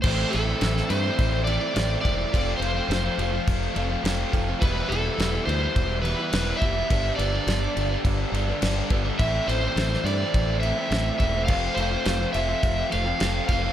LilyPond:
<<
  \new Staff \with { instrumentName = "Electric slide guitar" } { \time 4/4 \key a \minor \tempo 4 = 105 c''8 a'4 c''4 d''4 d''8~ | d''8 c''4. r2 | b'8 a'4 c''4 b'4 e''8~ | e''8 d''4. r2 |
e''8 c''4 d''4 e''4 e''8 | f''8 c''4 e''4 f''4 f''8 | }
  \new Staff \with { instrumentName = "Overdriven electric guitar" } { \time 4/4 \key a \minor <a, e a c' e'>8 <e a c' e'>16 <a c' e'>16 <a, e a c' e'>16 <a c' e'>16 <e a c' e'>16 <a c' e'>8. <e a c' e'>16 <a c' e'>16 <a, e a c' e'>8 <e a c' e'>16 <a c' e'>16 | <f a c' f'>8 <f a c' f'>16 <a c' f'>16 <f a c' f'>16 <a c' f'>16 <f a c' f'>16 <a c' f'>8. <f a c' f'>16 <a c' f'>16 <f a c' f'>8 <f a c' f'>16 <a c' f'>16 | <e g b e'>8 <e g b e'>16 <g b e'>16 <e g b e'>16 <g b e'>16 <e g b e'>16 <g b e'>8. <e g b e'>16 <g b e'>16 <e g b e'>8 <e g b e'>16 <g b e'>16 | <g, d g b d'>8 <d g b d'>16 <g b d'>16 <g, d g b d'>16 <g b d'>16 <d g b d'>16 <g b d'>8. <d g b d'>16 <g b d'>16 <g, d g b d'>8 <d g b d'>16 <g b d'>16 |
<a, e a c' e'>8 <e a c' e'>16 <a c' e'>16 <a, e a c' e'>16 <a c' e'>16 <e a c' e'>16 <a c' e'>8. <e a c' e'>16 <a c' e'>16 <a, e a c' e'>8 <e a c' e'>16 <a c' e'>16 | <f a c' f'>8 <f a c' f'>16 <a c' f'>16 <f a c' f'>16 <a c' f'>16 <f a c' f'>16 <a c' f'>8. <f a c' f'>16 <a c' f'>16 <f a c' f'>8 <f a c' f'>16 <a c' f'>16 | }
  \new Staff \with { instrumentName = "Fingered electric bass" } { \clef bass \time 4/4 \key a \minor a,,8 a,,8 a,,8 g,8 a,,4 a,,8 e,,8 | f,,8 f,,8 f,,8 f,,8 f,,8 f,,8 f,,8 f,,8 | e,,8 e,,8 e,,8 d,8 e,,4 e,,8 f,,8 | g,,8 g,,8 g,,8 g,,8 g,,8 g,,8 g,,8 g,,8 |
a,,8 a,,8 a,,8 g,8 a,,4 a,,8 e,,8 | f,,8 f,,8 f,,8 f,,8 f,,8 f,,8 f,,8 f,,8 | }
  \new DrumStaff \with { instrumentName = "Drums" } \drummode { \time 4/4 <cymc bd>8 cymc8 <cymc sn>16 sn16 cymc8 <cymc bd>8 cymc8 <cymc sn>8 <cymc bd>8 | <cymc bd>8 cymc8 <cymc sn>8 cymc8 <cymc bd>8 cymc8 <cymc sn>8 <cymc bd>8 | <cymc bd>8 cymc8 <cymc sn>8 cymc8 <cymc bd>8 cymc8 <cymc sn>8 <cymc bd>8 | <cymc bd>8 cymc8 <cymc sn>8 cymc8 <cymc bd>8 cymc8 <cymc sn>8 <cymc bd>8 |
<cymc bd>8 cymc8 <cymc sn>16 sn16 cymc8 <cymc bd>8 cymc8 <cymc sn>8 <cymc bd>8 | <cymc bd>8 cymc8 <cymc sn>8 cymc8 <cymc bd>8 cymc8 <cymc sn>8 <cymc bd>8 | }
>>